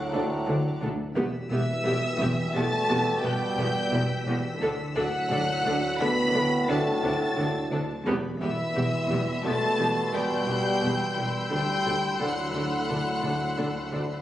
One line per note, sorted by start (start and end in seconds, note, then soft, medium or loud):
0.00 1.17 D2 loud
0.00 0.98 A2 loud
0.00 0.82 F#3 medium
0.00 0.98 F#3 medium
0.00 0.78 E5 medium
0.00 0.83 F#5 loud
0.00 0.78 A#5 medium
0.00 0.79 D6 medium
0.00 0.82 F#6 loud
0.12 0.22 D2 medium
0.12 0.34 D3 medium
0.12 0.20 D4 medium
0.12 0.21 A4 medium
0.47 0.56 D2 medium
0.47 0.57 D2 medium
0.47 0.69 D3 loud
0.47 0.55 D4 medium
0.47 0.55 A4 medium
0.81 0.91 D2 medium
0.81 0.89 D4 medium
0.81 1.03 D4 medium
0.81 0.89 A4 medium
1.15 4.62 E1 loud
1.15 1.25 E1 loud
1.15 1.38 E2 loud
1.15 1.26 E2 medium
1.15 4.57 B2 loud
1.15 4.57 G3 loud
1.15 1.24 B3 medium
1.15 1.24 G4 medium
1.15 7.68 E6 medium
1.15 6.30 B6 medium
1.51 1.59 E1 medium
1.51 1.72 E2 medium
1.51 1.60 E2 medium
1.51 2.51 E3 loud
1.51 1.59 B3 medium
1.51 1.59 G4 medium
1.51 2.51 E5 loud
1.51 2.50 E6 loud
1.85 1.94 E1 loud
1.85 2.07 E2 medium
1.85 1.95 E2 medium
1.85 1.93 B3 medium
1.85 1.93 G4 medium
2.20 2.28 E1 medium
2.20 2.41 E2 loud
2.20 2.29 E2 medium
2.20 2.28 B3 medium
2.20 2.28 G4 medium
2.54 2.63 E1 medium
2.54 2.75 E2 medium
2.54 2.63 E2 loud
2.54 3.24 A3 loud
2.54 2.63 B3 medium
2.54 2.63 G4 medium
2.54 3.24 A5 loud
2.54 3.22 A6 loud
2.89 2.98 E1 medium
2.89 3.09 E2 loud
2.89 2.97 E2 medium
2.89 2.97 B3 medium
2.89 2.97 G4 medium
3.23 3.32 E1 medium
3.23 3.44 E2 medium
3.23 3.32 E2 medium
3.23 4.61 G3 loud
3.23 3.31 B3 medium
3.23 3.31 G4 medium
3.23 4.62 G5 loud
3.23 4.61 G6 loud
3.57 3.65 E1 loud
3.57 3.79 E2 medium
3.57 3.66 E2 loud
3.57 3.66 B3 medium
3.57 3.66 G4 medium
3.92 4.00 E1 medium
3.92 4.13 E2 loud
3.92 4.01 E2 medium
3.92 4.01 B3 medium
3.92 4.01 G4 medium
4.26 4.34 E1 medium
4.26 4.35 E2 loud
4.26 4.48 E3 medium
4.26 4.35 B3 medium
4.26 4.35 G4 medium
4.60 4.68 D2 medium
4.60 8.10 D2 loud
4.60 4.70 D2 medium
4.60 7.88 A2 loud
4.60 4.82 D3 loud
4.60 7.88 F#3 loud
4.60 4.70 D4 medium
4.60 4.70 A4 loud
4.95 5.03 D2 loud
4.95 5.04 D2 medium
4.95 5.16 D3 medium
4.95 5.95 F#3 loud
4.95 5.04 D4 medium
4.95 5.04 A4 medium
4.95 5.96 F#5 loud
4.95 5.95 F#6 loud
5.30 5.38 D2 loud
5.30 5.39 D2 medium
5.30 5.51 D3 medium
5.30 5.39 D4 medium
5.30 5.38 A4 medium
5.65 5.73 D2 medium
5.65 5.85 D3 loud
5.65 5.73 D4 medium
5.65 5.73 A4 medium
5.99 6.07 D2 loud
5.99 6.08 D2 medium
5.99 6.20 D3 medium
5.99 6.68 B3 loud
5.99 6.07 D4 medium
5.99 6.08 A4 medium
5.99 6.68 B5 loud
5.99 6.69 B6 loud
6.33 6.42 D2 medium
6.33 6.54 D3 loud
6.33 6.42 D4 medium
6.33 6.42 A4 medium
6.68 6.77 D2 loud
6.68 6.89 D3 medium
6.68 8.06 A3 loud
6.68 6.76 D4 medium
6.68 6.77 A4 medium
6.68 8.04 A5 medium
6.68 8.06 A6 loud
7.03 7.11 D2 loud
7.03 7.12 D2 medium
7.03 7.24 D3 medium
7.03 7.12 D4 medium
7.03 7.11 A4 medium
7.37 7.46 D2 loud
7.37 7.46 D2 medium
7.37 7.58 D3 loud
7.37 7.46 D4 medium
7.37 7.46 A4 medium
7.71 7.81 D2 loud
7.71 7.81 D2 medium
7.71 7.80 D4 medium
7.71 7.93 D4 medium
7.71 7.79 A4 medium
8.05 8.15 E1 loud
8.05 11.53 E1 loud
8.05 8.27 E2 loud
8.05 8.15 E2 medium
8.05 11.47 B2 loud
8.05 11.47 G3 medium
8.05 8.14 B3 loud
8.05 8.14 G4 medium
8.05 14.22 B5 medium
8.40 8.50 E1 medium
8.40 8.61 E2 medium
8.40 8.50 E2 medium
8.40 9.41 E3 loud
8.40 8.48 B3 medium
8.40 8.48 G4 medium
8.40 9.41 E5 loud
8.40 9.41 E6 loud
8.75 8.85 E1 medium
8.75 8.96 E2 medium
8.75 8.84 E2 medium
8.75 8.83 B3 medium
8.75 8.83 G4 medium
8.75 14.22 C6 medium
9.09 9.19 E1 medium
9.09 9.30 E2 loud
9.09 9.18 E2 medium
9.09 9.18 B3 medium
9.09 9.18 G4 medium
9.44 9.53 E1 medium
9.44 9.65 E2 medium
9.44 9.53 E2 medium
9.44 10.12 A3 loud
9.44 9.52 B3 medium
9.44 9.52 G4 medium
9.44 10.13 A5 loud
9.44 14.22 E6 medium
9.44 10.13 A6 loud
9.78 9.88 E1 medium
9.78 9.99 E2 loud
9.78 9.87 E2 medium
9.78 9.86 B3 medium
9.78 9.87 G4 medium
10.13 10.22 E1 medium
10.13 10.34 E2 medium
10.13 10.21 E2 medium
10.13 11.50 G3 loud
10.13 10.21 B3 medium
10.13 10.21 G4 medium
10.13 11.49 G5 medium
10.13 11.50 G6 loud
10.47 10.56 E1 medium
10.47 10.68 E2 medium
10.47 10.56 E2 medium
10.47 10.56 B3 medium
10.47 10.55 G4 medium
10.82 10.90 E1 medium
10.82 11.03 E2 medium
10.82 10.90 E2 medium
10.82 10.90 B3 medium
10.82 10.90 G4 medium
11.16 11.26 E1 medium
11.16 11.24 E2 medium
11.16 11.37 E3 medium
11.16 11.24 B3 medium
11.16 11.24 G4 medium
11.50 11.59 D2 medium
11.50 14.22 D2 medium
11.50 11.60 D2 medium
11.50 14.22 A2 medium
11.50 11.72 D3 medium
11.50 12.19 G3 loud
11.50 14.22 A3 medium
11.50 11.58 D4 medium
11.50 11.59 A4 medium
11.50 12.18 G5 loud
11.50 12.19 G6 loud
11.85 11.93 D2 medium
11.85 11.94 D2 medium
11.85 12.07 D3 medium
11.85 11.93 D4 medium
11.85 11.93 A4 medium
12.20 12.28 D2 medium
12.20 12.41 D3 medium
12.20 14.22 F#3 medium
12.20 12.28 D4 medium
12.20 12.28 A4 medium
12.20 14.22 F#5 medium
12.20 14.22 F#6 medium
12.54 12.62 D2 medium
12.54 12.75 D3 medium
12.54 12.62 D4 medium
12.54 12.62 A4 medium
12.89 12.97 D2 medium
12.89 13.10 D3 medium
12.89 12.97 D4 medium
12.89 12.97 A4 medium
13.23 13.31 D2 medium
13.23 13.32 D2 medium
13.23 13.44 D3 medium
13.23 13.31 D4 medium
13.23 13.31 A4 medium
13.58 13.66 D2 medium
13.58 13.78 D3 medium
13.58 13.66 D4 medium
13.58 13.66 A4 medium
13.92 14.01 D2 medium
13.92 14.13 D3 medium
13.92 14.00 D4 medium
13.92 14.00 A4 medium